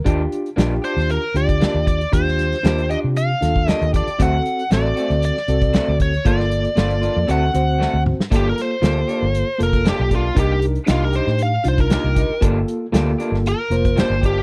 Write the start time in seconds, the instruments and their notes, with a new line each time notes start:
0.04 fingered electric bass D#2, clean electric guitar A#3 D4 G4, reed electric piano D4 F4 G4, kick, closed hi-hat
0.32 closed hi-hat
0.46 closed hi-hat
0.56 fingered electric bass A#1, clean electric guitar A#3 D4 G4, reed electric piano D4 F4 G4, snare, closed hi-hat
0.82 clean electric guitar D4 G4, lead electric guitar C5, closed hi-hat
0.97 fingered electric bass D#2, snare, closed hi-hat
1.09 lead electric guitar A#4, closed hi-hat
1.34 fingered electric bass D2, reed electric piano D4 F4 G4, lead electric guitar D5, closed hi-hat
1.49 kick, closed hi-hat
1.60 clean electric guitar A#3 D4 G4, snare, closed hi-hat
1.74 fingered electric bass D#2
1.87 lead electric guitar D5, kick, closed hi-hat
2.01 closed hi-hat
2.12 fingered electric bass D#2, reed electric piano D4 F4 G4, lead electric guitar C5, kick, closed hi-hat
2.28 snare
2.39 snare, closed hi-hat
2.52 snare, closed hi-hat
2.63 fingered electric bass D#2, clean electric guitar A#3 D4 G4, reed electric piano D4 F4 G4, snare, closed hi-hat
2.78 closed hi-hat
2.89 clean electric guitar D4 G4, lead electric guitar D#5, closed hi-hat
3.04 fingered electric bass C3
3.16 lead electric guitar F5, closed hi-hat
3.41 fingered electric bass D#2, reed electric piano D4 F4 A4, snare, closed hi-hat
3.56 kick
3.67 clean electric guitar A#3 D4 G4, lead electric guitar D#5, snare, closed hi-hat
3.81 fingered electric bass D#2, closed hi-hat
3.93 clean electric guitar D4 G4, lead electric guitar D5, kick, closed hi-hat
4.07 muted fingered electric bass stroke, closed hi-hat
4.19 fingered electric bass D2, clean electric guitar F#3 A3 C4 F#4, reed electric piano C4 F#4 A4, lead electric guitar F#5, kick, closed hi-hat
4.46 closed hi-hat
4.59 closed hi-hat
4.70 fingered electric bass A1, clean electric guitar F#3 A3 C4 F#4, reed electric piano C4 F#4 A4, lead electric guitar D5, snare, closed hi-hat
4.96 clean electric guitar A3 C4 F#4, closed hi-hat
5.10 fingered electric bass D2, closed hi-hat
5.22 lead electric guitar D5, closed hi-hat
5.37 snare
5.48 fingered electric bass C2, reed electric piano C4 F#4 A4, closed hi-hat
5.61 kick, closed hi-hat
5.73 clean electric guitar F#3 A3 C4 F#4, snare, closed hi-hat
5.88 fingered electric bass D2
6.00 lead electric guitar C#5, kick, closed hi-hat
6.14 closed hi-hat
6.25 fingered electric bass G1, clean electric guitar F3 A#3 D4 F4, reed electric piano A#3 F4 A4, lead electric guitar D5, kick, closed hi-hat
6.40 snare
6.51 closed hi-hat
6.65 closed hi-hat
6.76 fingered electric bass G1, clean electric guitar F3 A#3 D4 F4, reed electric piano A#3 F4 A4, lead electric guitar D5, snare, closed hi-hat
6.90 closed hi-hat
7.01 clean electric guitar A#3 D4 F4, closed hi-hat
7.17 fingered electric bass F2
7.27 fingered electric bass D2, clean electric guitar A3 C4 F#4, reed electric piano C4 F#4 A4, lead electric guitar F#5, closed hi-hat
7.54 fingered electric bass D2, reed electric piano C4 F#4 C5, closed hi-hat
7.79 clean electric guitar A3 C4 F#4, snare
7.94 fingered electric bass D2
8.06 mid tom
8.19 muted fingered electric bass stroke, snare
8.30 fingered electric bass G1, clean electric guitar F3 A#3 D4 G4, reed electric piano A#3 F4 A4, kick, closed hi-hat
8.36 lead electric guitar G4
8.49 lead electric guitar A#4
8.58 lead electric guitar C5, snare, closed hi-hat
8.82 fingered electric bass D2, clean electric guitar F3 A#3 D4 G4, reed electric piano A#3 F4 A4, snare, closed hi-hat
9.08 clean electric guitar A#3 D4 G4, closed hi-hat
9.22 fingered electric bass G1
9.35 closed hi-hat
9.58 fingered electric bass F1, reed electric piano A#3 F4 A4, closed hi-hat
9.63 lead electric guitar A#4
9.73 kick, closed hi-hat
9.85 clean electric guitar F3 A#3 D4 G4, snare, closed hi-hat
9.89 lead electric guitar G4
10.00 fingered electric bass B1
10.10 clean electric guitar A#3 D4 G4, kick, closed hi-hat
10.15 lead electric guitar F4
10.35 fingered electric bass C2, clean electric guitar A#3 D#4 G4, reed electric piano D4 D#4 A#4, kick, closed hi-hat
10.40 lead electric guitar G4
10.62 closed hi-hat
10.75 closed hi-hat
10.87 fingered electric bass C2, clean electric guitar A#3 D#4 G4, reed electric piano D4 D#4 G4, snare, closed hi-hat
10.91 lead electric guitar F4
11.04 lead electric guitar A#4
11.13 clean electric guitar D#4 G4, lead electric guitar C5, closed hi-hat
11.27 fingered electric bass A2, snare
11.38 closed hi-hat
11.43 lead electric guitar F5
11.64 fingered electric bass C2, reed electric piano D4 D#4 F4, closed hi-hat
11.68 lead electric guitar C5
11.78 lead electric guitar A#4, kick, closed hi-hat
11.89 clean electric guitar A#3 D#4 G4, lead electric guitar A#4, snare, closed hi-hat
12.04 fingered electric bass C2
12.15 clean electric guitar D#4 G4, kick, closed hi-hat
12.30 muted fingered electric bass stroke
12.41 fingered electric bass G1, clean electric guitar F3 A#3 D4 G4, reed electric piano A#3 F4 A4, kick, closed hi-hat
12.68 closed hi-hat
12.92 fingered electric bass D2, clean electric guitar F3 A#3 D4 G4, reed electric piano A#3 F4 A4, snare, closed hi-hat
13.18 clean electric guitar A#3 D4 G4, closed hi-hat
13.32 fingered electric bass G1, snare
13.46 lead electric guitar A#4, closed hi-hat
13.70 fingered electric bass F1, reed electric piano A#3 F4 C5, closed hi-hat
13.85 kick, closed hi-hat
13.96 clean electric guitar F3 A#3 D4 G4, snare, closed hi-hat
14.00 lead electric guitar C5
14.10 fingered electric bass G1
14.21 clean electric guitar A#3 D4 G4, kick, closed hi-hat
14.26 lead electric guitar G4